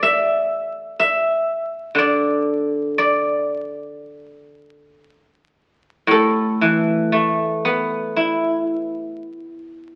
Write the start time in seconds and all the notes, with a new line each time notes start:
Already playing: A4 D5
0.03 E5
1.00 E5
1.95 D3 D5
2.98 D5
6.07 A2 A4
6.61 E3
7.12 A3
7.65 B3
8.16 E4